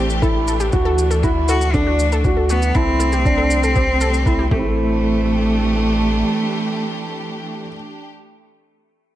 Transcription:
Already playing: sub bass A1, string section E3 A3 D4 G4, cello C4
0.10 shaker
0.22 felt piano E4, synth arpeggio sound A4, kick, shaker
0.48 synth arpeggio sound A4, shaker
0.60 synth arpeggio sound G4, shaker
0.73 sub bass D2, felt piano F#4, kick, shaker
0.85 synth arpeggio sound A4
0.98 shaker
1.11 string section F#4, synth arpeggio sound A4, shaker
1.23 felt piano E4, synth arpeggio sound F#4, kick, shaker
1.48 cello F#4, synth arpeggio sound A4, shaker
1.61 shaker
1.74 cello D4, felt piano D4, synth arpeggio sound A4, kick, shaker
1.87 synth arpeggio sound F#4
1.99 shaker
2.12 synth arpeggio sound A4, shaker
2.25 felt piano F#4, kick, shaker
2.37 synth arpeggio sound A4
2.49 cello B3, synth arpeggio sound F#4, shaker
2.62 shaker
2.75 sub bass C2, cello C4, felt piano E4, synth arpeggio sound A4, kick, shaker
3.00 synth arpeggio sound A4, shaker
3.13 synth arpeggio sound G4, shaker
3.25 felt piano D4, kick, shaker
3.38 synth arpeggio sound A4
3.51 shaker
3.63 string section G4, synth arpeggio sound A4, shaker
3.76 felt piano C4, synth arpeggio sound G4, kick, shaker
4.01 synth arpeggio sound A4, shaker
4.14 shaker
4.26 felt piano E4, synth arpeggio sound A4, kick, shaker
4.39 synth arpeggio sound G4
4.51 sub bass A1, string section E3, felt piano A3, cello A3, synth arpeggio sound G4, kick
4.55 string section A3, felt piano C4
4.59 felt piano E4 A4
4.90 string section D4
4.99 string section G4

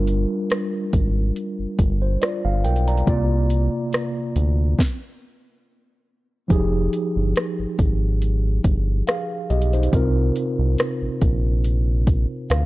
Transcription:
Already playing: analog synth bass G1, tine electric piano G3 D4 F4 A#4
0.07 closed hi-hat
0.50 cross-stick, closed hi-hat
0.93 analog synth bass G#1, kick, closed hi-hat
1.36 closed hi-hat
1.59 analog synth bass G1
1.79 analog synth bass G1, kick, closed hi-hat
2.02 tine electric piano C5
2.22 tine electric piano F4 D5, cross-stick, closed hi-hat
2.45 analog synth bass G1, tine electric piano F5
2.64 analog synth bass B1, tine electric piano A#4 G5, closed hi-hat
2.76 closed hi-hat
2.88 tine electric piano D5 A#5, closed hi-hat
2.97 closed hi-hat
3.06 analog synth bass C2, tine electric piano C3 A#3 F4 D5, kick, closed hi-hat
3.50 closed hi-hat
3.93 cross-stick, closed hi-hat
4.36 analog synth bass D2, closed hi-hat
4.79 kick, snare
6.48 analog synth bass F1, tine electric piano F3 D#4 G4 G#4, kick, closed hi-hat
6.93 closed hi-hat
7.16 analog synth bass G1
7.36 cross-stick, closed hi-hat
7.59 analog synth bass G#1
7.79 analog synth bass G#1, kick, closed hi-hat
8.22 closed hi-hat
8.64 analog synth bass G1, kick, closed hi-hat
9.07 tine electric piano G#4 F5, cross-stick, closed hi-hat
9.50 analog synth bass B1, tine electric piano G4 D#5, closed hi-hat
9.62 closed hi-hat
9.73 tine electric piano D#4 C5, closed hi-hat
9.83 closed hi-hat
9.91 analog synth bass C2, tine electric piano C3 C4 F4 A#4, kick, closed hi-hat
10.36 closed hi-hat
10.59 analog synth bass C2
10.78 cross-stick, closed hi-hat
11.02 analog synth bass A#1
11.21 analog synth bass A#1, kick, closed hi-hat
11.64 closed hi-hat
12.07 kick, closed hi-hat
12.50 analog synth bass D2, tine electric piano F5, cross-stick, closed hi-hat

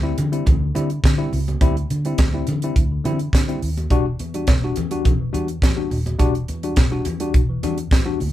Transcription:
Already playing: fingered electric bass D2
0.03 tine electric piano G3 C4 E4
0.17 tine electric piano D3, fingered electric bass D3, closed hi-hat, muted conga, low conga
0.32 tine electric piano G3 C4 E4, closed hi-hat
0.46 fingered electric bass D2, tine electric piano C4 E4, kick, closed hi-hat, low conga
0.60 tine electric piano D3
0.75 fingered electric bass D3, tine electric piano G3 C4 E4, closed hi-hat, muted conga
0.90 closed hi-hat
1.03 tine electric piano D3, fingered electric bass D3, kick, snare, closed hi-hat, high conga
1.18 tine electric piano G3 C4 E4
1.32 fingered electric bass C#2, tine electric piano C4 E4, open hi-hat, high conga
1.48 closed hi-hat, high conga
1.61 fingered electric bass D2, tine electric piano G3 C4 E4, kick, closed hi-hat, muted conga
1.77 closed hi-hat
1.90 fingered electric bass D3, tine electric piano D3, closed hi-hat, muted conga
2.05 tine electric piano G3 C4 E4, closed hi-hat
2.18 fingered electric bass D2, kick, snare, closed hi-hat, high conga
2.33 tine electric piano G3 C4 E4
2.47 tine electric piano D3, fingered electric bass D3, closed hi-hat, muted conga, low conga
2.62 tine electric piano G3 C4 E4, closed hi-hat
2.76 fingered electric bass D2, tine electric piano C4 E4, kick, closed hi-hat
2.91 tine electric piano D3
3.04 fingered electric bass D3, tine electric piano G3 C4 E4, closed hi-hat, muted conga, low conga
3.19 closed hi-hat
3.33 fingered electric bass D3, tine electric piano D3, kick, snare, closed hi-hat, high conga
3.48 tine electric piano G3 C4 E4, closed hi-hat
3.62 fingered electric bass D#2, tine electric piano C4 E4, open hi-hat
3.77 closed hi-hat, high conga
3.90 fingered electric bass E1, tine electric piano G3 D4 F#4, kick, closed hi-hat, muted conga
4.19 fingered electric bass E2, tine electric piano E3, closed hi-hat, muted conga
4.34 tine electric piano G3 D4 F#4, closed hi-hat
4.47 fingered electric bass E1, kick, snare, closed hi-hat, high conga
4.64 tine electric piano G3 D4 F#4
4.76 fingered electric bass E2, tine electric piano E3, closed hi-hat, muted conga, low conga
4.91 tine electric piano G3 D4 F#4, closed hi-hat
5.05 fingered electric bass E1, kick, closed hi-hat, low conga
5.20 tine electric piano E3
5.33 fingered electric bass E2, tine electric piano G3 D4 F#4, closed hi-hat, muted conga
5.48 closed hi-hat
5.62 fingered electric bass E2, tine electric piano E3, kick, snare, closed hi-hat, high conga
5.76 tine electric piano G3 D4 F#4
5.91 fingered electric bass D#1, tine electric piano D4 F#4, open hi-hat, high conga
6.06 closed hi-hat, high conga
6.19 fingered electric bass E1, tine electric piano G3 D4 F#4, kick, closed hi-hat, muted conga
6.35 closed hi-hat
6.48 fingered electric bass E2, tine electric piano E3, closed hi-hat, muted conga
6.63 tine electric piano G3 D4 F#4, closed hi-hat
6.76 fingered electric bass E1, kick, snare, closed hi-hat, high conga
6.91 tine electric piano G3 D4 F#4
7.05 fingered electric bass E2, tine electric piano E3, closed hi-hat, muted conga, low conga
7.20 tine electric piano G3 D4 F#4, closed hi-hat
7.34 fingered electric bass E1, tine electric piano D4 F#4, kick, closed hi-hat
7.49 tine electric piano E3
7.63 fingered electric bass E2, tine electric piano G3 D4 F#4, closed hi-hat, muted conga, low conga
7.78 closed hi-hat
7.91 fingered electric bass E2, tine electric piano E3, kick, snare, closed hi-hat, high conga
8.05 tine electric piano G3 D4 F#4
8.19 fingered electric bass D2, tine electric piano C4 E4, open hi-hat, high conga

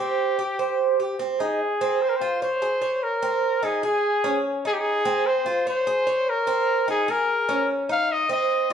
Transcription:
Already playing: trumpet G4
0.00 cuban tres C4
0.39 cuban tres G4
0.59 cuban tres C5
1.00 cuban tres G4
1.19 cuban tres C4
1.40 cuban tres D#4, trumpet G#4
1.81 cuban tres C4
2.02 trumpet C5
2.09 trumpet A#4
2.16 trumpet C5
2.21 cuban tres F4
2.42 trumpet C5, cuban tres C#5
2.62 cuban tres G#4
2.82 cuban tres C#5
3.03 trumpet A#4
3.22 cuban tres C4
3.63 cuban tres D#4, trumpet G#4
3.83 cuban tres G#4, trumpet G#4
4.24 cuban tres C#4
4.65 cuban tres D#4, trumpet G#4
4.73 trumpet G4
4.80 trumpet G#4
5.05 cuban tres C4
5.26 trumpet C5
5.46 cuban tres F4
5.67 trumpet C5, cuban tres C#5
5.87 cuban tres G#4
6.07 cuban tres C#5
6.29 trumpet A#4
6.47 cuban tres C4
6.88 cuban tres D#4, trumpet G#4
7.08 cuban tres G#4, trumpet A#4
7.49 cuban tres C#4
7.89 cuban tres D#4, trumpet F5
8.12 trumpet D#5
8.29 cuban tres C4, trumpet D#5

